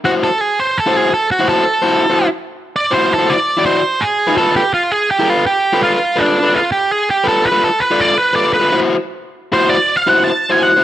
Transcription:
0.04 0.27 E4 medium
0.04 0.27 F#4 medium
0.04 0.10 F#4 medium
0.04 0.28 C5 medium
0.24 0.41 A4 medium
0.41 0.59 G#4 medium
0.60 0.78 C5 loud
0.78 0.96 A4 medium
0.86 1.09 E4 medium
0.86 1.09 F#4 loud
0.86 1.09 C5 loud
0.96 1.14 G#4 medium
1.14 1.31 A4 medium
1.31 1.48 F#4 medium
1.39 1.62 E4 medium
1.39 1.63 F#4 medium
1.39 1.63 C5 medium
1.49 2.27 A4 medium
1.82 2.04 E4 medium
1.82 2.04 F#4 medium
1.82 2.04 C5 medium
2.10 2.26 E4 medium
2.10 2.26 F#4 medium
2.10 2.26 C5 medium
2.76 2.93 D5 loud
2.91 3.13 E4 medium
2.91 3.13 F#4 medium
2.91 3.12 C5 medium
2.91 3.13 C5 medium
3.13 3.31 A4 medium
3.18 3.35 E4 medium
3.18 3.35 F#4 medium
3.18 3.34 C5 medium
3.30 3.65 D5 loud
3.57 3.80 E4 medium
3.57 3.80 F#4 medium
3.57 3.80 D5 medium
3.66 4.04 C5 medium
4.02 4.37 G#4 medium
4.27 4.37 E4 medium
4.27 4.38 F#4 medium
4.27 4.39 C5 medium
4.38 4.61 F4 medium
4.38 4.56 A4 medium
4.38 4.61 A4 medium
4.38 4.61 B4 medium
4.56 4.73 G4 loud
4.74 4.92 F4 medium
4.92 5.10 G#4 loud
5.11 5.30 G4 medium
5.19 5.42 F4 medium
5.19 5.43 A4 medium
5.19 5.43 B4 loud
5.30 5.46 F4 medium
5.47 5.81 G4 medium
5.73 5.96 F4 medium
5.73 5.96 A4 medium
5.73 5.96 B4 loud
5.83 6.20 F4 medium
6.16 6.57 D4 medium
6.16 6.38 F4 medium
6.16 6.38 A4 medium
6.16 6.37 B4 medium
6.43 6.60 F4 soft
6.43 6.60 A4 medium
6.43 6.59 B4 medium
6.54 6.72 F4 medium
6.72 6.92 G4 medium
6.92 7.10 G#4 medium
7.11 7.28 G4 loud
7.24 7.46 F4 medium
7.24 7.46 A4 medium
7.24 7.45 B4 medium
7.28 7.47 A4 medium
7.45 7.62 B4 medium
7.52 7.68 F4 medium
7.52 7.68 A4 medium
7.52 7.68 B4 medium
7.64 7.81 A4 medium
7.80 8.00 B4 medium
7.91 8.13 F4 medium
7.91 8.14 A4 medium
7.91 8.14 D5 medium
8.00 8.18 D5 medium
8.18 8.35 B4 medium
8.33 8.55 F4 medium
8.33 8.55 A4 medium
8.33 8.54 B4 medium
8.33 8.53 D5 medium
8.53 8.79 B4 medium
8.60 8.71 F4 medium
8.60 8.72 A4 medium
8.60 8.73 B4 medium
8.72 8.94 E4 medium
8.72 8.95 F#4 medium
8.72 8.95 C5 medium
9.52 9.75 E4 medium
9.52 9.75 F#4 medium
9.52 9.76 C5 loud
9.52 9.69 C5 medium
9.69 9.97 D5 medium
9.97 10.08 F5 loud
10.07 10.29 E4 medium
10.07 10.30 F#4 medium
10.07 10.30 C5 medium
10.07 10.24 F#5 loud
10.24 10.51 A5 loud
10.50 10.71 E4 medium
10.50 10.71 F#4 medium
10.50 10.71 C5 medium
10.50 10.63 G#5 loud
10.63 10.84 F#5 loud
10.76 10.84 E4 medium
10.76 10.84 F#4 medium
10.76 10.84 C5 medium

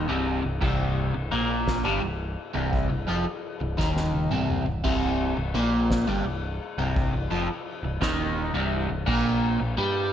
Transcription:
0.08 0.42 C1 medium
0.08 0.42 C2 medium
0.08 0.43 C3 medium
0.27 ride medium
0.43 0.60 C1 medium
0.43 0.60 C2 medium
0.61 1.11 C1 loud
0.61 1.13 C2 medium
0.61 1.13 C3 loud
0.61 kick loud
0.61 crash loud
0.97 ride medium
1.14 1.31 C1 medium
1.14 1.31 C2 medium
1.31 1.81 A#1 medium
1.31 1.83 A#2 medium
1.31 1.84 A#3 loud
1.31 ride medium
1.67 kick medium
1.67 snare loud
1.67 ride medium
1.84 2.01 G1 medium
1.84 2.01 G2 medium
1.84 2.01 G3 loud
2.02 2.35 C1 medium
2.02 2.30 C2 medium
2.02 ride medium
2.37 ride medium
2.55 2.88 C1 medium
2.55 2.89 C2 medium
2.55 2.89 C3 medium
2.73 kick loud
2.73 ride loud
2.90 3.07 C1 medium
2.90 3.07 C2 medium
3.07 3.24 F1 medium
3.07 3.24 F2 medium
3.07 3.25 F3 loud
3.07 ride medium
3.44 ride medium
3.61 3.77 C1 medium
3.61 3.77 C2 medium
3.77 4.28 D#1 medium
3.77 4.30 D#2 medium
3.77 4.30 D#3 loud
3.77 kick medium
3.77 snare medium
3.97 snare medium
4.14 high tom medium
4.31 4.64 C1 medium
4.31 4.65 C2 loud
4.31 4.65 C3 loud
4.31 mid tom medium
4.49 mid tom medium
4.66 4.83 C1 medium
4.66 4.83 C2 medium
4.66 floor tom medium
4.84 5.34 C1 loud
4.84 5.36 C2 loud
4.84 5.36 C3 loud
4.84 kick loud
4.84 crash loud
5.20 ride medium
5.37 5.53 C1 medium
5.37 5.54 C2 medium
5.54 6.03 A#1 loud
5.54 6.06 A#2 medium
5.54 6.07 A#3 loud
5.54 ride medium
5.90 kick medium
5.90 snare loud
5.90 ride loud
6.07 6.24 G1 loud
6.07 6.24 G2 medium
6.07 6.24 G3 loud
6.25 6.58 C1 medium
6.25 6.53 C2 medium
6.25 ride medium
6.61 ride medium
6.78 7.11 C1 medium
6.78 7.12 C2 medium
6.78 7.13 C3 loud
6.96 kick loud
6.96 ride loud
7.13 7.29 C1 medium
7.13 7.30 C2 medium
7.30 7.47 F1 medium
7.30 7.47 F2 medium
7.30 7.48 F3 loud
7.30 ride medium
7.67 ride medium
7.83 8.00 C1 medium
7.83 8.00 C2 medium
8.01 8.51 D#1 medium
8.01 8.53 D#2 medium
8.01 8.53 D#3 loud
8.01 kick medium
8.01 snare loud
8.01 ride medium
8.37 ride medium
8.54 8.87 C1 medium
8.54 8.88 C2 medium
8.54 8.89 C3 medium
8.72 ride medium
8.90 9.06 C1 medium
8.90 9.06 C2 medium
9.06 9.57 A#1 loud
9.06 9.59 A#2 medium
9.06 9.59 A#3 medium
9.06 kick loud
9.06 crash loud
9.43 ride medium
9.60 9.77 A#1 medium
9.60 9.78 A#2 medium
9.77 10.13 G2 loud
9.77 10.13 G3 medium
9.77 10.13 G4 loud
9.77 ride medium

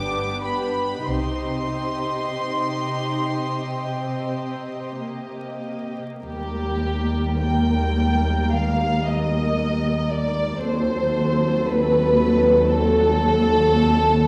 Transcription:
0.00 1.03 G1 soft
0.00 1.07 G2 soft
0.00 1.04 B3 soft
0.00 1.07 D4 soft
0.00 0.41 G4 soft
0.00 1.07 B4 soft
0.00 0.38 D6 medium
0.42 1.05 G4 soft
0.42 1.08 B5 medium
1.06 2.35 C2 soft
1.06 6.01 C3 soft
1.06 2.25 C4 soft
1.06 2.23 D#4 soft
1.06 6.01 G4 soft
1.06 6.01 D#5 soft
1.06 5.01 C6 medium
2.39 3.67 D#4 soft
3.70 4.97 C4 medium
5.00 6.22 A#3 soft
6.23 10.58 D#2 soft
6.23 10.58 G3 soft
6.23 10.58 A#3 soft
6.23 7.38 G4 medium
6.23 10.58 A#4 soft
7.42 8.53 G5 medium
8.54 9.07 F5 medium
9.07 10.11 D#5 medium
10.11 10.63 D5 medium
10.61 14.27 D#2 medium
10.61 14.27 F#3 medium
10.61 14.27 C4 medium
10.61 14.27 A4 medium
10.61 11.65 C5 medium
11.68 12.72 B4 medium
12.70 14.27 A4 medium

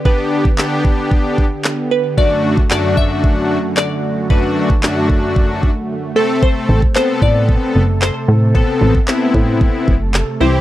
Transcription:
0.00 6.12 D3 medium
0.00 2.14 B3 medium
0.00 2.14 G4 medium
0.05 0.49 B3 medium
0.05 0.49 D4 medium
0.05 0.49 G4 medium
0.05 0.55 B4 medium
0.05 kick loud
0.45 kick medium
0.58 1.45 B3 medium
0.58 1.45 D4 medium
0.58 1.45 G4 medium
0.58 snare medium
0.58 clap loud
0.85 kick medium
1.11 kick loud
1.38 kick medium
1.65 snare medium
1.65 clap loud
1.91 2.19 B4 medium
2.17 2.61 F#2 medium
2.17 6.12 F#2 medium
2.17 2.61 A3 medium
2.17 4.28 A3 medium
2.17 2.61 D4 medium
2.17 6.12 F#4 medium
2.17 2.61 F#4 medium
2.17 2.67 D5 loud
2.17 kick loud
2.57 kick medium
2.71 3.57 F#2 medium
2.71 3.58 A3 medium
2.71 3.58 D4 medium
2.71 3.58 F#4 medium
2.71 2.96 D5 loud
2.71 snare medium
2.71 clap loud
2.97 3.79 E5 loud
2.97 kick medium
3.24 kick loud
3.77 4.26 D5 loud
3.77 snare medium
3.77 clap loud
4.30 4.73 F#2 medium
4.30 4.73 A3 medium
4.30 8.24 A3 medium
4.30 4.74 D4 medium
4.30 4.74 F#4 medium
4.30 4.79 B4 medium
4.30 kick loud
4.70 kick medium
4.83 5.70 F#2 medium
4.83 5.70 A3 medium
4.83 5.70 D4 medium
4.83 5.70 F#4 medium
4.83 snare medium
4.83 clap loud
5.10 kick medium
5.36 kick loud
5.63 kick medium
6.16 10.37 C3 medium
6.16 6.81 A3 medium
6.16 6.81 C4 medium
6.16 10.37 A4 medium
6.16 6.43 A4 medium
6.16 6.81 A4 medium
6.43 6.92 C5 loud
6.43 kick loud
6.69 6.87 A1 medium
6.82 kick loud
6.95 7.82 B3 medium
6.95 7.82 C4 medium
6.95 7.83 A4 medium
6.95 7.08 C5 loud
6.95 snare medium
6.95 clap loud
7.22 7.58 A2 medium
7.22 7.98 D5 loud
7.22 kick medium
7.49 kick loud
7.75 8.11 F#1 medium
8.02 8.57 C5 loud
8.02 snare medium
8.02 clap loud
8.28 8.64 A2 medium
8.28 10.39 A3 medium
8.55 8.98 B3 medium
8.55 8.98 C4 medium
8.55 8.98 A4 medium
8.55 9.04 A4 medium
8.55 kick loud
8.81 8.99 A1 medium
8.95 kick medium
9.08 9.95 B3 medium
9.08 9.95 C4 medium
9.08 9.95 E4 medium
9.08 snare medium
9.08 clap loud
9.34 9.70 A2 medium
9.34 kick medium
9.61 kick loud
9.88 10.24 F#1 medium
9.88 kick medium
10.14 snare medium
10.14 clap loud
10.40 10.61 C2 medium
10.40 10.61 E3 medium
10.40 10.61 C4 medium
10.40 10.61 E4 medium
10.40 10.61 G4 medium
10.40 10.61 C5 medium

